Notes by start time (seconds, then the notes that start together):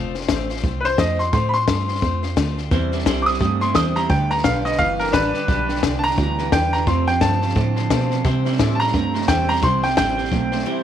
Already playing: F1 F3 A3 C4 F4 C5
0.15 C4 F4 C5, snare
0.21 snare
0.28 A1 F3 A3 C4 F4 C5, kick, snare, hi-hat pedal
0.50 C4 F4 C5, snare
0.57 snare
0.63 C2 A3 C4 F4 C5, kick, snare
0.80 B4 C5, snare
0.85 C4 F4 C5
0.98 F2 F3 A3 C4 F4 C5 D#5, kick, snare, hi-hat pedal
1.19 C4 F4 C5 C6, snare
1.33 A2 F3 A3 C4 F4 C5 C6, kick, snare
1.49 B5
1.54 C4 F4 C5 C6, snare
1.67 G2 F3 A3 C4 F4 C5, kick, snare, hi-hat pedal
1.88 C4 F4 C5, snare
1.95 snare
2.02 F2 A3 C4 F4 C5, kick, snare
2.23 C4 F4 C5, snare
2.36 D2 F3 A3 C4 F4 C5, kick, snare, hi-hat pedal
2.57 C4 F4 C5, snare
2.71 E2 C3 E3 G3 C4 E4 C5, kick, snare
2.92 C3 G3 C4 E4 C5, snare
2.99 snare
3.06 C2 C3 E3 G3 C4 E4 C5, kick, snare, hi-hat pedal
3.22 D6
3.26 C3 G3 C4 E4 C5 D#6, snare
3.34 snare
3.40 G2 C3 G3 A3 C4 E4 C5, kick, snare
3.61 C3 G3 A3 C4 E4 C5 C6, snare
3.74 E2 C3 E3 G3 C4 E4 C5 D#6, kick, snare, hi-hat pedal
3.95 C3 G3 C4 E4 C5 A#5, snare
4.09 D2 G2 D3 G3 D4 G4 B4 G5, kick, snare
4.30 G2 D3 D4 G4 B4 A#5, snare
4.38 snare
4.44 B1 G2 D3 G3 D4 G4 B4 F5, kick, snare, hi-hat pedal
4.65 G2 D3 D4 G4 B4 D#5, snare
4.72 snare
4.78 G1 G2 E3 G3 D4 G4 B4 F5, kick, snare
4.99 G2 E3 D4 G4 A#4 B4, snare
5.07 snare
5.12 A1 G2 D3 G3 D4 G4 B4, kick, snare, hi-hat pedal
5.34 G2 D3 D4 G4 B4, snare
5.48 B1 G2 D3 G3 D4 G4 B4, kick, snare
5.69 G2 D3 D4 G4 B4, snare
5.76 snare
5.83 C2 G2 D3 G3 D4 G4 B4, kick, snare, hi-hat pedal
5.99 A5
6.03 G2 D3 D4 G4 B4 A#5, snare
6.11 snare
6.17 D2 G2 E3 G3 D4 G4 B4, kick, snare
6.38 G2 E3 D4 G4 B4, snare
6.52 E2 G2 D3 G3 D4 G4 B4 G5, kick, snare, hi-hat pedal
6.73 G2 D3 D4 G4 B4 A#5, snare
6.87 F2 C3 F3 A3 C4 F4 C5 C6, kick, snare
7.07 F2 C3 C4 F4 C5 G5, snare
7.21 F2 G2 F3 A3 C4 F4 C5 A5, kick, snare, hi-hat pedal
7.41 F2 C3 C4 F4 C5, snare
7.49 snare
7.55 F2 A2 D3 A3 C4 F4 C5, kick, snare
7.76 F2 D3 C4 F4 C5, snare
7.90 F2 B2 C3 F3 A3 C4 F4 C5, kick, snare, hi-hat pedal
8.11 F2 C3 C4 F4 C5, snare
8.24 C3 E3 G3 C4 E4 C5, kick, snare
8.45 C3 G3 C4 E4 C5, snare
8.53 snare
8.58 A2 C3 E3 G3 C4 E4 C5, kick, snare, hi-hat pedal
8.75 C5 A5
8.80 C3 G3 C4 E4 A#5, snare
8.87 snare
8.94 G2 C3 G3 A3 C4 E4 C5, kick, snare
9.14 C3 G3 A3 C4 E4 C5, snare
9.22 snare
9.28 E2 C3 E3 G3 C4 E4 C5 G5, kick, snare, hi-hat pedal
9.48 C3 G3 C4 E4 C5 A#5, snare
9.56 snare
9.62 C2 C3 E3 G3 C4 E4 C5 C6, kick, snare
9.83 C3 G3 C4 E4 C5 G5, snare
9.90 snare
9.96 A1 C3 E3 G3 C4 E4 C5 G5, kick, snare, hi-hat pedal
10.17 C3 G3 C4 E4 C5, snare
10.25 snare
10.31 B1 C3 G3 A3 C4 E4 C5, kick, snare
10.52 C3 G3 A3 C4 E4 C5, snare
10.59 snare
10.65 C3 E3 G3 C4 E4 C5